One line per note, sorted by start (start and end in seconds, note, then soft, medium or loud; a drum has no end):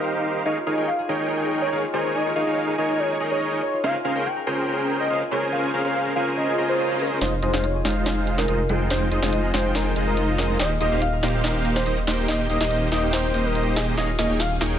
0.00 0.24 D#4 medium
0.00 0.43 D#4 medium
0.00 0.14 G4 medium
0.00 0.43 G4 medium
0.00 0.43 A#4 medium
0.00 1.73 A#4 medium
0.00 0.43 C5 medium
0.00 1.82 D#5 medium
0.00 0.43 F5 medium
0.00 1.22 A#5 medium
0.14 0.35 G4 medium
0.25 0.45 D#4 medium
0.36 0.73 G4 medium
0.45 0.58 D#4 medium
0.45 1.08 D#4 medium
0.45 0.58 G#4 medium
0.45 0.58 A#4 medium
0.45 0.58 C#5 medium
0.45 0.58 D#5 medium
0.45 0.58 F5 medium
0.57 0.87 F4 medium
0.66 0.76 D#4 medium
0.66 0.98 G#4 loud
0.66 0.76 G#4 medium
0.66 0.76 A#4 medium
0.66 0.76 C#5 medium
0.66 0.79 D#5 medium
0.66 0.76 F5 medium
0.78 0.89 D#4 medium
0.78 0.89 G#4 medium
0.78 0.89 A#4 medium
0.78 0.89 C#5 medium
0.78 2.46 C#5 medium
0.78 0.89 G5 medium
0.87 1.19 F4 medium
0.87 1.00 F5 medium
0.99 1.30 G#4 medium
1.09 1.41 D#4 medium
1.09 1.70 D#4 medium
1.09 1.70 G#4 medium
1.09 1.70 A#4 medium
1.09 1.70 C#5 medium
1.09 1.70 G5 loud
1.20 1.83 F4 medium
1.30 1.51 G#4 medium
1.41 1.72 D#4 medium
1.51 1.62 G#4 medium
1.62 1.93 G#4 medium
1.62 1.80 C#5 medium
1.72 1.85 D#4 medium
1.72 2.04 D#4 medium
1.72 1.85 G#4 medium
1.72 1.85 A#4 medium
1.72 1.85 C#5 medium
1.72 1.85 F5 medium
1.83 2.25 F4 medium
1.93 2.33 D#4 medium
1.93 2.35 G#4 medium
1.93 2.33 G#4 medium
1.93 2.33 A#4 medium
1.93 2.16 C5 medium
1.93 2.33 C#5 medium
1.93 2.33 G#5 loud
2.04 2.14 D#4 medium
2.14 2.77 D#4 medium
2.14 2.27 D#5 medium
2.26 2.56 F4 medium
2.35 2.44 D#4 medium
2.35 2.44 G#4 medium
2.35 2.67 G#4 loud
2.35 2.44 A#4 medium
2.35 2.44 C#5 medium
2.35 2.60 D#5 medium
2.35 2.44 F5 medium
2.47 2.75 D#4 medium
2.47 2.76 G#4 medium
2.47 2.75 A#4 medium
2.47 4.15 C#5 medium
2.47 2.76 C#5 medium
2.47 2.76 F5 medium
2.57 2.89 F4 medium
2.68 2.99 G#4 medium
2.78 3.10 D#4 medium
2.78 3.18 D#4 medium
2.78 3.18 G#4 medium
2.78 3.18 A#4 medium
2.78 3.18 C#5 medium
2.78 3.00 D#5 medium
2.78 3.18 G#5 medium
2.89 3.52 F4 medium
2.99 3.20 G#4 medium
2.99 3.18 C#5 medium
3.10 3.41 D#4 medium
3.20 3.61 D#4 medium
3.20 3.31 G#4 medium
3.20 3.61 G#4 medium
3.20 3.61 A#4 medium
3.20 3.61 C#5 medium
3.20 3.61 D#5 medium
3.31 3.94 G#4 medium
3.31 3.50 C#5 medium
3.41 6.12 D#4 medium
3.52 3.73 F4 medium
3.62 4.04 A#4 medium
3.62 3.85 C#5 medium
3.73 3.83 F4 medium
3.83 3.96 C#4 medium
3.83 4.46 F4 medium
3.83 3.96 G#4 medium
3.83 3.96 A#4 medium
3.83 3.96 C5 medium
3.83 3.96 F5 medium
3.94 4.25 G#4 medium
4.05 4.14 C#4 medium
4.05 4.14 G#4 medium
4.05 4.36 A#4 medium
4.05 4.14 A#4 medium
4.05 4.14 C5 medium
4.05 4.27 F5 medium
4.05 4.14 F5 medium
4.15 4.27 C#4 medium
4.15 4.27 G#4 medium
4.15 4.27 A#4 medium
4.15 4.27 C5 medium
4.15 5.84 C#5 medium
4.15 4.27 G5 loud
4.26 4.57 G#4 medium
4.26 4.38 G5 medium
4.37 4.68 A#4 medium
4.47 5.08 C#4 medium
4.47 4.79 F4 loud
4.47 5.08 G#4 medium
4.47 5.08 A#4 medium
4.47 5.08 C5 medium
4.47 5.08 G5 loud
4.58 5.21 G#4 medium
4.68 4.89 A#4 medium
4.79 5.10 F4 medium
4.89 5.00 A#4 medium
5.00 5.31 A#4 medium
5.00 5.18 D#5 loud
5.10 5.22 C#4 medium
5.10 5.42 F4 medium
5.10 5.22 G#4 medium
5.10 5.22 A#4 medium
5.10 5.22 C5 medium
5.10 5.22 F5 medium
5.21 5.63 G#4 medium
5.31 5.71 C#4 medium
5.31 5.71 G#4 medium
5.31 5.71 A#4 medium
5.31 5.73 A#4 medium
5.31 5.71 C5 medium
5.31 5.44 C#5 medium
5.31 5.71 G#5 loud
5.42 5.52 F4 medium
5.52 6.16 F4 medium
5.52 5.65 F5 medium
5.63 5.94 G#4 medium
5.74 5.82 C#4 medium
5.74 5.82 G#4 medium
5.74 6.05 A#4 loud
5.74 5.82 A#4 medium
5.74 5.82 C5 medium
5.74 5.82 F5 loud
5.74 5.99 F5 medium
5.84 6.13 C#4 medium
5.84 6.13 G#4 medium
5.84 6.13 A#4 medium
5.84 6.13 C5 medium
5.84 7.76 C#5 medium
5.84 6.13 F5 medium
5.95 6.26 G#4 medium
6.06 6.37 A#4 medium
6.16 6.56 C#4 medium
6.16 6.48 F4 medium
6.16 6.56 G#4 medium
6.16 6.56 A#4 medium
6.16 6.56 C5 medium
6.16 6.28 F5 medium
6.16 6.56 G#5 medium
6.27 6.90 G#4 medium
6.37 6.58 A#4 loud
6.37 6.56 D#5 medium
6.37 swell medium
6.48 6.79 F4 medium
6.58 7.19 C#4 medium
6.58 7.19 G#4 medium
6.58 7.19 A#4 medium
6.58 6.69 A#4 medium
6.58 7.19 C5 medium
6.58 7.19 D#5 medium
6.69 7.00 A#4 medium
6.69 7.02 C5 loud
6.79 7.11 F4 medium
6.90 7.42 G#4 medium
7.00 7.13 A#4 medium
7.00 9.12 A#4 medium
7.11 7.32 F4 medium
7.21 7.40 F1 medium
7.21 7.34 G#3 medium
7.21 7.34 D#4 medium
7.21 7.84 D#4 medium
7.21 7.34 F4 medium
7.21 7.34 C5 medium
7.21 7.34 D#5 medium
7.21 snare soft
7.21 closed hi-hat medium
7.32 7.63 F4 medium
7.42 7.51 F1 medium
7.42 7.52 G#3 medium
7.42 7.52 D#4 medium
7.42 7.52 F4 medium
7.42 7.74 G#4 loud
7.42 7.52 C5 medium
7.42 7.65 C5 medium
7.42 7.52 D#5 medium
7.42 closed hi-hat medium
7.53 7.83 F1 medium
7.53 7.65 G#3 medium
7.53 7.65 D#4 medium
7.53 7.65 F4 medium
7.53 7.65 C5 medium
7.53 9.22 D#5 medium
7.53 7.65 F5 loud
7.53 snare soft
7.64 7.95 F4 medium
7.64 7.76 C#5 medium
7.64 closed hi-hat medium
7.75 8.05 G#4 medium
7.85 8.46 F1 medium
7.85 8.46 G#3 medium
7.85 8.46 D#4 medium
7.85 8.16 D#4 medium
7.85 8.46 F4 medium
7.85 8.46 C5 medium
7.85 8.46 F5 loud
7.85 snare soft
7.85 closed hi-hat soft
7.90 closed hi-hat medium
7.96 8.59 F4 medium
8.06 8.27 G#4 medium
8.06 snare soft
8.06 closed hi-hat medium
8.17 8.48 D#4 medium
8.27 8.38 G#4 medium
8.27 closed hi-hat medium
8.38 8.69 G#4 medium
8.38 8.71 A#4 loud
8.38 snare soft
8.48 8.67 F1 medium
8.48 8.60 G#3 medium
8.48 8.61 D#4 medium
8.48 8.80 D#4 medium
8.48 8.60 F4 medium
8.48 8.60 C5 medium
8.48 8.60 D#5 medium
8.48 closed hi-hat medium
8.59 9.01 F4 medium
8.69 9.10 F1 medium
8.69 9.09 G#3 loud
8.69 9.09 D#4 medium
8.69 9.09 F4 medium
8.69 9.11 G#4 medium
8.69 8.82 G#4 medium
8.69 9.09 C5 medium
8.69 9.09 G5 loud
8.69 closed hi-hat medium
8.80 8.90 D#4 medium
8.90 9.53 D#4 medium
8.90 9.03 C5 medium
8.90 snare medium
8.90 closed hi-hat medium
9.01 9.32 F4 medium
9.11 9.20 F1 medium
9.11 9.20 G#3 medium
9.11 9.20 D#4 medium
9.11 9.20 F4 medium
9.11 9.43 G#4 loud
9.11 9.36 C5 medium
9.11 9.20 C5 medium
9.11 9.20 D#5 loud
9.11 closed hi-hat medium
9.22 9.52 F1 medium
9.22 9.51 G#3 medium
9.22 9.51 D#4 medium
9.22 9.51 F4 medium
9.22 9.51 C5 medium
9.22 10.91 D#5 medium
9.22 9.51 D#5 medium
9.22 snare soft
9.33 9.64 F4 medium
9.33 closed hi-hat medium
9.44 9.74 G#4 loud
9.53 9.94 F1 medium
9.53 9.94 G#3 medium
9.53 9.85 D#4 medium
9.53 9.94 D#4 medium
9.53 9.94 F4 medium
9.53 9.66 C5 medium
9.53 9.94 C5 medium
9.53 9.94 G5 medium
9.53 snare soft
9.53 closed hi-hat soft
9.59 closed hi-hat medium
9.64 10.28 F4 medium
9.75 9.96 G#4 loud
9.75 9.94 A#4 medium
9.75 snare medium
9.75 closed hi-hat medium
9.86 10.17 D#4 medium
9.96 10.58 F1 loud
9.96 10.57 G#3 medium
9.96 10.57 D#4 medium
9.96 10.57 F4 medium
9.96 10.07 G#4 loud
9.96 10.57 C5 medium
9.96 10.57 D#5 medium
9.96 closed hi-hat medium
10.07 10.38 G#4 medium
10.07 10.25 A#4 medium
10.17 10.49 D#4 medium
10.17 closed hi-hat medium
10.28 12.80 F4 medium
10.38 10.77 G#4 medium
10.38 10.61 A#4 medium
10.38 snare medium
10.38 closed hi-hat medium
10.49 10.59 D#4 medium
10.59 10.79 D#1 loud
10.59 10.72 A#3 medium
10.59 10.72 D#4 medium
10.59 11.22 D#4 loud
10.59 10.72 G4 medium
10.59 10.72 C5 medium
10.59 10.72 D#5 loud
10.59 10.72 D#5 medium
10.59 snare medium
10.59 closed hi-hat medium
10.71 11.02 G4 medium
10.80 10.89 D#1 loud
10.80 10.90 A#3 medium
10.80 10.90 D#4 medium
10.80 10.90 G4 medium
10.80 11.12 A#4 loud
10.80 10.90 C5 medium
10.80 10.93 D#5 medium
10.80 10.90 D#5 medium
10.80 closed hi-hat medium
10.92 11.21 D#1 medium
10.92 11.03 A#3 medium
10.92 11.03 D#4 medium
10.92 11.03 G4 medium
10.92 11.03 C5 medium
10.92 12.60 D#5 medium
10.92 11.03 F5 loud
11.02 11.33 G4 medium
11.02 11.15 F5 medium
11.02 closed hi-hat medium
11.13 11.44 A#4 loud
11.23 11.84 D#1 medium
11.23 11.84 A#3 medium
11.23 11.55 D#4 loud
11.23 11.84 D#4 medium
11.23 11.84 G4 medium
11.23 11.84 C5 medium
11.23 11.84 F5 loud
11.23 snare medium
11.23 closed hi-hat soft
11.28 closed hi-hat medium
11.34 11.97 G4 medium
11.44 11.65 A#4 loud
11.44 snare medium
11.44 closed hi-hat medium
11.55 11.86 D#4 medium
11.65 11.76 A#4 medium
11.65 closed hi-hat medium
11.76 12.07 A#4 medium
11.76 11.95 C5 loud
11.76 snare medium
11.86 12.05 D#1 loud
11.86 11.99 A#3 medium
11.86 12.18 D#4 medium
11.86 11.99 D#4 medium
11.86 11.99 G4 medium
11.86 11.99 C5 medium
11.86 11.99 D#5 medium
11.86 closed hi-hat medium
11.97 12.39 G4 medium
12.07 12.48 D#1 medium
12.07 12.47 A#3 medium
12.07 12.47 D#4 medium
12.07 12.47 G4 medium
12.07 12.49 A#4 medium
12.07 12.47 C5 medium
12.07 12.20 C5 medium
12.07 12.47 G5 loud
12.07 snare medium
12.07 closed hi-hat medium
12.18 12.28 D#4 medium
12.28 12.92 D#4 medium
12.28 12.41 D#5 medium
12.28 snare medium
12.28 closed hi-hat medium
12.40 12.71 G4 medium
12.49 12.58 D#1 medium
12.49 12.58 A#3 medium
12.49 12.58 D#4 medium
12.49 12.58 G4 medium
12.49 12.81 A#4 loud
12.49 12.58 C5 medium
12.49 12.74 D#5 medium
12.49 12.58 D#5 loud
12.49 closed hi-hat medium
12.60 12.90 D#1 medium
12.60 12.89 A#3 medium
12.60 12.89 D#4 medium
12.60 12.89 G4 medium
12.60 12.89 C5 medium
12.60 12.89 D#5 medium
12.60 13.55 D#5 medium
12.60 snare medium
12.71 13.03 G4 medium
12.71 closed hi-hat medium
12.82 13.13 A#4 loud
12.92 13.32 D#1 medium
12.92 13.32 A#3 medium
12.92 13.24 D#4 loud
12.92 13.32 D#4 medium
12.92 13.32 G4 medium
12.92 13.32 C5 medium
12.92 13.05 D#5 medium
12.92 13.32 G5 loud
12.92 snare medium
12.92 closed hi-hat soft
12.97 closed hi-hat medium
13.03 13.66 G4 medium
13.13 14.79 A#4 loud
13.13 13.46 C5 medium
13.13 snare medium
13.13 closed hi-hat medium
13.24 13.45 D#4 medium
13.34 13.95 D#1 medium
13.34 13.95 A#3 medium
13.34 13.95 D#4 medium
13.34 13.95 G4 medium
13.34 13.95 C5 medium
13.34 13.95 D#5 medium
13.34 14.74 A#5 medium
13.34 closed hi-hat medium
13.45 13.76 D#4 medium
13.45 13.64 A#4 loud
13.55 14.79 D#5 medium
13.55 closed hi-hat medium
13.66 13.87 G4 loud
13.76 13.97 D#4 medium
13.76 13.97 G#4 medium
13.76 snare medium
13.76 closed hi-hat medium
13.88 14.25 G4 medium
13.97 14.16 D#1 loud
13.97 14.10 A#3 medium
13.97 14.10 D#4 medium
13.97 14.29 D#4 medium
13.97 14.10 G#4 medium
13.97 14.10 C#5 medium
13.97 14.10 D#5 medium
13.97 14.10 F5 medium
13.97 snare medium
13.97 closed hi-hat medium
13.97 riser medium
14.09 14.40 F4 medium
14.19 14.27 D#1 medium
14.19 14.28 A#3 medium
14.19 14.28 D#4 medium
14.19 14.51 G#4 medium
14.19 14.28 G#4 medium
14.19 14.28 C#5 medium
14.19 14.31 D#5 medium
14.19 14.28 F5 medium
14.19 snare medium
14.19 closed hi-hat medium
14.29 14.59 D#1 medium
14.29 14.41 A#3 medium
14.29 14.41 D#4 medium
14.29 14.61 D#4 medium
14.29 14.41 G#4 medium
14.29 14.41 C#5 medium
14.29 14.41 G5 medium
14.40 14.72 F4 medium
14.40 14.53 F5 medium
14.40 snare medium
14.40 closed hi-hat medium
14.51 14.79 G#4 medium
14.61 14.79 D#1 loud
14.61 14.79 A#3 medium
14.61 14.79 D#4 medium
14.61 14.79 G#4 medium
14.61 14.79 C#5 medium
14.61 14.79 G5 loud
14.61 snare medium
14.61 open hi-hat medium
14.66 closed hi-hat medium
14.72 14.79 F4 medium